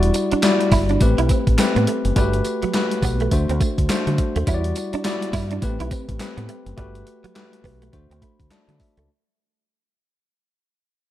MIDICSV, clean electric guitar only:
0, 0, Header, 1, 3, 480
1, 0, Start_track
1, 0, Tempo, 576923
1, 1799, Time_signature, 4, 2, 24, 8
1, 9242, End_track
2, 0, Start_track
2, 0, Title_t, "Clean electric guitar"
2, 0, Program_c, 0, 27
2, 267, Note_on_c, 0, 62, 73
2, 337, Note_off_c, 0, 62, 0
2, 600, Note_on_c, 0, 64, 78
2, 710, Note_off_c, 0, 64, 0
2, 745, Note_on_c, 0, 62, 82
2, 817, Note_off_c, 0, 62, 0
2, 985, Note_on_c, 0, 64, 77
2, 1056, Note_off_c, 0, 64, 0
2, 1083, Note_on_c, 0, 60, 85
2, 1192, Note_off_c, 0, 60, 0
2, 1467, Note_on_c, 0, 59, 72
2, 1537, Note_off_c, 0, 59, 0
2, 1563, Note_on_c, 0, 57, 78
2, 1672, Note_off_c, 0, 57, 0
2, 1806, Note_on_c, 0, 55, 91
2, 1914, Note_off_c, 0, 55, 0
2, 2188, Note_on_c, 0, 54, 78
2, 2258, Note_off_c, 0, 54, 0
2, 2525, Note_on_c, 0, 59, 81
2, 2633, Note_off_c, 0, 59, 0
2, 2669, Note_on_c, 0, 57, 82
2, 2739, Note_off_c, 0, 57, 0
2, 2911, Note_on_c, 0, 60, 67
2, 2980, Note_off_c, 0, 60, 0
2, 3003, Note_on_c, 0, 57, 81
2, 3112, Note_off_c, 0, 57, 0
2, 3390, Note_on_c, 0, 54, 71
2, 3460, Note_off_c, 0, 54, 0
2, 3629, Note_on_c, 0, 57, 86
2, 3699, Note_off_c, 0, 57, 0
2, 3724, Note_on_c, 0, 64, 87
2, 3833, Note_off_c, 0, 64, 0
2, 4109, Note_on_c, 0, 62, 85
2, 4179, Note_off_c, 0, 62, 0
2, 4439, Note_on_c, 0, 64, 77
2, 4549, Note_off_c, 0, 64, 0
2, 4589, Note_on_c, 0, 62, 85
2, 4659, Note_off_c, 0, 62, 0
2, 4828, Note_on_c, 0, 64, 80
2, 4898, Note_off_c, 0, 64, 0
2, 4919, Note_on_c, 0, 60, 86
2, 5029, Note_off_c, 0, 60, 0
2, 5302, Note_on_c, 0, 59, 76
2, 5374, Note_off_c, 0, 59, 0
2, 5398, Note_on_c, 0, 57, 72
2, 5509, Note_off_c, 0, 57, 0
2, 5639, Note_on_c, 0, 55, 90
2, 5750, Note_off_c, 0, 55, 0
2, 6025, Note_on_c, 0, 54, 85
2, 6096, Note_off_c, 0, 54, 0
2, 6359, Note_on_c, 0, 59, 80
2, 6469, Note_off_c, 0, 59, 0
2, 6506, Note_on_c, 0, 57, 85
2, 6577, Note_off_c, 0, 57, 0
2, 6750, Note_on_c, 0, 60, 70
2, 6820, Note_off_c, 0, 60, 0
2, 6841, Note_on_c, 0, 57, 80
2, 6951, Note_off_c, 0, 57, 0
2, 7228, Note_on_c, 0, 54, 68
2, 7298, Note_off_c, 0, 54, 0
2, 7468, Note_on_c, 0, 57, 75
2, 7538, Note_off_c, 0, 57, 0
2, 9242, End_track
3, 0, Start_track
3, 0, Title_t, "Muted clean electric guitar strokes"
3, 120, Note_on_c, 9, 29, 46
3, 204, Note_off_c, 9, 29, 0
3, 359, Note_on_c, 9, 29, 46
3, 442, Note_off_c, 9, 29, 0
3, 842, Note_on_c, 9, 29, 46
3, 925, Note_off_c, 9, 29, 0
3, 1326, Note_on_c, 9, 29, 43
3, 1409, Note_off_c, 9, 29, 0
3, 2044, Note_on_c, 9, 29, 45
3, 2127, Note_off_c, 9, 29, 0
3, 2283, Note_on_c, 9, 29, 48
3, 2366, Note_off_c, 9, 29, 0
3, 2763, Note_on_c, 9, 29, 44
3, 2847, Note_off_c, 9, 29, 0
3, 3485, Note_on_c, 9, 29, 49
3, 3568, Note_off_c, 9, 29, 0
3, 3966, Note_on_c, 9, 29, 47
3, 4049, Note_off_c, 9, 29, 0
3, 4202, Note_on_c, 9, 29, 45
3, 4286, Note_off_c, 9, 29, 0
3, 4682, Note_on_c, 9, 29, 45
3, 4765, Note_off_c, 9, 29, 0
3, 5159, Note_on_c, 9, 29, 43
3, 5242, Note_off_c, 9, 29, 0
3, 5880, Note_on_c, 9, 29, 49
3, 5964, Note_off_c, 9, 29, 0
3, 6123, Note_on_c, 9, 29, 45
3, 6207, Note_off_c, 9, 29, 0
3, 6601, Note_on_c, 9, 29, 45
3, 6684, Note_off_c, 9, 29, 0
3, 7323, Note_on_c, 9, 29, 46
3, 7406, Note_off_c, 9, 29, 0
3, 9242, End_track
0, 0, End_of_file